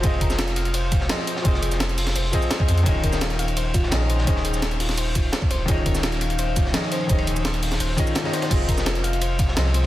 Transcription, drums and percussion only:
0.03 kick, closed hi-hat, ride, shaker
0.14 ride
0.21 kick, closed hi-hat, ride
0.30 snare, shaker
0.39 snare, closed hi-hat, ride, shaker
0.48 snare, closed hi-hat
0.56 closed hi-hat, ride
0.65 closed hi-hat
0.74 closed hi-hat, ride, shaker
0.92 kick, snare, closed hi-hat, ride, shaker
1.01 snare
1.09 snare, closed hi-hat, ride, shaker
1.19 snare
1.27 closed hi-hat, ride
1.36 snare
1.45 kick, closed hi-hat, ride, shaker
1.54 snare
1.63 closed hi-hat, ride, shaker
1.72 snare, closed hi-hat, shaker
1.80 snare, closed hi-hat, ride, shaker
1.89 closed hi-hat, ride
1.98 closed hi-hat, open hi-hat, shaker
2.07 snare, closed hi-hat
2.16 closed hi-hat, ride, shaker
2.33 kick, closed hi-hat, ride, shaker
2.42 shaker
2.50 snare, closed hi-hat, ride, shaker
2.60 kick
2.68 closed hi-hat, ride, shaker
2.78 closed hi-hat
2.86 kick, closed hi-hat, ride, shaker
2.95 ride
3.04 kick, closed hi-hat, ride
3.12 snare, shaker
3.21 snare, closed hi-hat, ride, shaker
3.30 snare, closed hi-hat
3.39 closed hi-hat, ride
3.48 closed hi-hat
3.57 closed hi-hat, ride, shaker
3.74 kick, snare, closed hi-hat, ride, shaker
3.83 snare
3.91 snare, closed hi-hat, ride, shaker
4.01 snare
4.10 closed hi-hat, ride
4.19 snare
4.27 kick, closed hi-hat, ride, shaker
4.36 snare
4.45 closed hi-hat, ride
4.54 snare, shaker
4.62 snare, closed hi-hat, ride, shaker
4.71 closed hi-hat, ride
4.80 closed hi-hat, open hi-hat
4.89 snare, closed hi-hat
4.98 closed hi-hat, ride, shaker
5.15 kick, closed hi-hat, ride, shaker
5.33 snare, closed hi-hat, ride, shaker
5.42 kick
5.50 closed hi-hat, ride
5.68 kick, closed hi-hat, ride, shaker
5.77 ride
5.86 kick, closed hi-hat, ride
5.94 snare, shaker
6.03 snare, closed hi-hat, ride, shaker
6.12 snare, closed hi-hat
6.21 closed hi-hat, ride
6.30 closed hi-hat
6.39 closed hi-hat, ride, shaker
6.56 kick, snare, closed hi-hat, ride, shaker
6.66 snare
6.74 snare, closed hi-hat, ride, shaker
6.83 snare
6.92 closed hi-hat, ride
7.01 ride
7.09 kick, closed hi-hat, ride, shaker
7.18 ride
7.27 closed hi-hat, ride, shaker
7.36 ride, shaker
7.45 snare, closed hi-hat, ride, shaker
7.54 closed hi-hat, ride
7.62 closed hi-hat, open hi-hat
7.72 snare, closed hi-hat
7.80 closed hi-hat, ride, shaker
7.97 kick, closed hi-hat, ride, shaker
8.07 shaker
8.15 snare, closed hi-hat, ride, shaker
8.25 snare, ride
8.33 snare, closed hi-hat, ride, shaker
8.42 snare, closed hi-hat, ride
8.51 kick, closed hi-hat, ride, crash, shaker
8.60 ride
8.69 kick, closed hi-hat, ride
8.78 snare, shaker
8.86 snare, closed hi-hat, ride, shaker
8.95 snare, closed hi-hat
9.04 closed hi-hat, ride
9.13 closed hi-hat
9.21 closed hi-hat, ride, shaker
9.39 kick, snare, closed hi-hat, ride, shaker
9.48 snare
9.57 snare, closed hi-hat, ride, shaker
9.66 snare
9.74 closed hi-hat, ride
9.83 snare

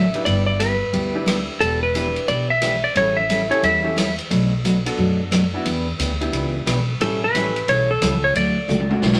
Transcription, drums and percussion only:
0.14 ride
0.26 ride
0.60 hi-hat pedal, ride
0.93 ride
1.27 cross-stick, hi-hat pedal, ride
1.61 ride
1.95 hi-hat pedal, ride
2.16 ride
2.28 ride
2.62 cross-stick, hi-hat pedal, ride
2.96 ride
3.30 hi-hat pedal, ride
3.51 ride
3.63 ride
3.98 cross-stick, hi-hat pedal, ride
4.19 ride
4.31 ride
4.65 hi-hat pedal, ride
4.86 ride
5.32 cross-stick, hi-hat pedal, ride
5.66 ride
6.00 hi-hat pedal, ride
6.21 ride
6.33 ride
6.67 cross-stick, hi-hat pedal, ride
7.01 ride
7.35 hi-hat pedal, ride
7.56 ride
7.68 ride
8.02 cross-stick, hi-hat pedal, ride
8.35 ride
8.69 hi-hat pedal, high tom
8.80 high tom
8.91 high tom
9.02 snare
9.13 snare

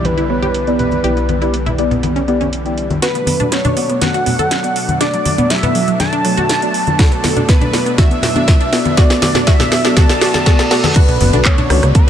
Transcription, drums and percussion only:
0.04 closed hi-hat, high conga
0.18 closed hi-hat
0.42 closed hi-hat, high conga
0.54 closed hi-hat
0.67 closed hi-hat
0.79 closed hi-hat, low conga
0.91 closed hi-hat, high conga
1.04 closed hi-hat
1.17 closed hi-hat
1.29 closed hi-hat, high conga
1.42 closed hi-hat
1.54 closed hi-hat
1.66 closed hi-hat, high conga, low conga
1.78 closed hi-hat
1.91 closed hi-hat, low conga
2.03 closed hi-hat, high conga
2.16 closed hi-hat
2.28 closed hi-hat
2.41 closed hi-hat, high conga
2.53 closed hi-hat
2.66 closed hi-hat
2.78 closed hi-hat
2.90 closed hi-hat, high conga
3.02 snare, closed hi-hat
3.15 closed hi-hat
3.27 open hi-hat, high conga
3.40 closed hi-hat, low conga
3.52 snare, closed hi-hat
3.65 closed hi-hat, high conga, low conga
3.77 open hi-hat
3.90 closed hi-hat
4.01 snare, closed hi-hat, high conga
4.14 closed hi-hat
4.26 open hi-hat, low conga
4.39 closed hi-hat, high conga
4.51 snare, closed hi-hat
4.64 closed hi-hat
4.76 open hi-hat
4.88 closed hi-hat, high conga
5.01 snare, closed hi-hat
5.14 closed hi-hat
5.25 open hi-hat, high conga
5.38 closed hi-hat, low conga
5.50 snare, closed hi-hat
5.63 closed hi-hat, high conga, low conga
5.75 open hi-hat
5.88 closed hi-hat
6.00 snare, closed hi-hat, high conga
6.13 closed hi-hat
6.25 open hi-hat
6.37 closed hi-hat, high conga
6.49 snare, closed hi-hat
6.62 closed hi-hat
6.74 open hi-hat
6.87 closed hi-hat, high conga
6.99 kick, snare, closed hi-hat
7.12 closed hi-hat
7.24 snare, open hi-hat, high conga
7.37 closed hi-hat, low conga
7.49 kick, snare, closed hi-hat
7.61 closed hi-hat, high conga, low conga
7.73 snare, open hi-hat
7.86 closed hi-hat
7.98 kick, snare, closed hi-hat, high conga
8.11 closed hi-hat
8.22 snare, open hi-hat, low conga
8.35 closed hi-hat, high conga
8.48 kick, snare, closed hi-hat
8.61 closed hi-hat
8.73 snare, open hi-hat
8.85 closed hi-hat, high conga
8.97 kick, snare, closed hi-hat
9.10 snare, closed hi-hat
9.22 snare, open hi-hat, high conga
9.34 snare, closed hi-hat, low conga
9.47 kick, snare, closed hi-hat
9.59 snare, closed hi-hat, high conga, low conga
9.72 snare, open hi-hat
9.85 snare, closed hi-hat
9.97 kick, snare, closed hi-hat, high conga
10.09 snare, closed hi-hat
10.21 snare, open hi-hat
10.34 snare, closed hi-hat, high conga
10.46 kick, snare, closed hi-hat
10.59 snare, closed hi-hat
10.71 snare, open hi-hat
10.84 snare, closed hi-hat, high conga
10.96 kick, closed hi-hat, crash
11.09 closed hi-hat
11.21 open hi-hat, high conga
11.33 closed hi-hat, low conga
11.45 kick, clap, closed hi-hat
11.58 closed hi-hat, low conga
11.70 cross-stick, open hi-hat, high conga
11.83 cross-stick, closed hi-hat
11.95 kick, closed hi-hat

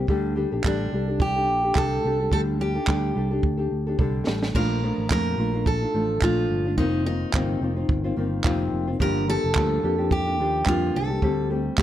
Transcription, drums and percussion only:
0.08 kick
0.64 kick, clap
1.20 kick
1.75 kick, clap
2.32 kick
2.87 kick, clap
3.43 kick
3.99 kick
4.27 snare
4.43 snare
4.55 kick, crash
5.10 kick, clap
5.66 kick
6.22 kick, clap
6.78 kick
7.33 kick, clap
7.89 kick
8.44 kick, clap
9.00 kick
9.55 kick, clap
10.11 kick
10.66 kick, clap
11.22 kick
11.78 kick, clap

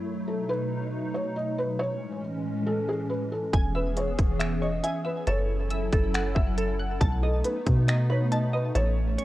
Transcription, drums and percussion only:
3.53 kick, closed hi-hat
3.97 closed hi-hat
4.19 kick, closed hi-hat
4.40 finger snap, closed hi-hat
4.84 closed hi-hat
5.27 closed hi-hat
5.71 closed hi-hat
5.93 kick, closed hi-hat
6.14 finger snap, closed hi-hat
6.36 kick
6.58 closed hi-hat
7.01 kick, closed hi-hat
7.45 closed hi-hat
7.67 kick, closed hi-hat
7.88 finger snap, closed hi-hat
8.32 closed hi-hat
8.75 closed hi-hat
9.19 closed hi-hat

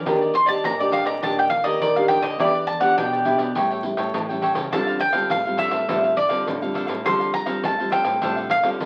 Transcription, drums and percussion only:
0.06 pandeiro
0.22 pandeiro
0.34 pandeiro
0.47 pandeiro
0.64 pandeiro
0.80 pandeiro
0.92 pandeiro
1.06 pandeiro
1.23 pandeiro
1.39 pandeiro
1.50 pandeiro
1.64 pandeiro
1.81 pandeiro
1.97 pandeiro
2.09 pandeiro
2.23 pandeiro
2.39 pandeiro
2.55 pandeiro
2.68 pandeiro
2.80 pandeiro
2.98 pandeiro
3.13 pandeiro
3.25 pandeiro
3.39 pandeiro
3.55 pandeiro
3.71 pandeiro
3.83 pandeiro
3.97 pandeiro
4.14 pandeiro
4.30 pandeiro
4.42 pandeiro
4.55 pandeiro
4.72 pandeiro
4.87 pandeiro
5.00 pandeiro
5.13 pandeiro
5.30 pandeiro
5.46 pandeiro
5.58 pandeiro
5.71 pandeiro
5.89 pandeiro
6.04 pandeiro
6.17 pandeiro
6.30 pandeiro
6.47 pandeiro
6.63 pandeiro
6.75 pandeiro
6.89 pandeiro
7.06 pandeiro
7.21 pandeiro
7.34 pandeiro
7.47 pandeiro
7.64 pandeiro
7.80 pandeiro
7.92 pandeiro
8.05 pandeiro
8.21 pandeiro
8.37 pandeiro
8.50 pandeiro
8.63 pandeiro
8.80 pandeiro

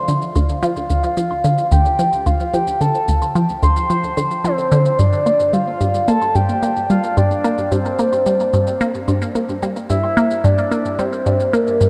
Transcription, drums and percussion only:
0.08 shaker
0.22 shaker
0.35 low woodblock, shaker
0.49 shaker
0.63 shaker
0.76 shaker
0.90 shaker
1.03 shaker
1.17 shaker
1.31 low woodblock
1.44 shaker
1.58 shaker
1.72 shaker
1.85 shaker
1.99 shaker
2.13 shaker
2.26 low woodblock, shaker
2.40 shaker
2.54 shaker
2.67 shaker
2.81 shaker
2.95 shaker
3.08 shaker
3.22 low woodblock, shaker
3.36 shaker
3.49 shaker
3.63 shaker
3.76 shaker
3.90 shaker
4.04 shaker
4.17 low woodblock, shaker
4.31 shaker
4.45 shaker
4.58 shaker
4.72 shaker
4.85 shaker
4.99 shaker
5.13 shaker
5.26 low woodblock, shaker
5.40 shaker
5.53 shaker
5.81 shaker
5.94 shaker
6.08 shaker
6.22 low woodblock, shaker
6.35 shaker
6.49 shaker
6.63 shaker
6.76 shaker
6.90 shaker
7.03 shaker
7.17 low woodblock, shaker
7.31 shaker
7.44 shaker
7.58 shaker
7.72 shaker
7.85 shaker
7.99 shaker
8.13 low woodblock, shaker
8.26 shaker
8.40 shaker
8.53 shaker
8.67 shaker
8.81 shaker
8.94 shaker
9.08 low woodblock, shaker
9.22 shaker
9.35 shaker
9.49 shaker
9.63 shaker
9.76 shaker
9.90 shaker
10.04 low woodblock
10.17 shaker
10.31 shaker
10.44 shaker
10.58 shaker
10.72 shaker
10.85 shaker
10.99 low woodblock, shaker
11.13 shaker
11.26 shaker
11.40 shaker
11.54 shaker
11.67 shaker
11.81 shaker

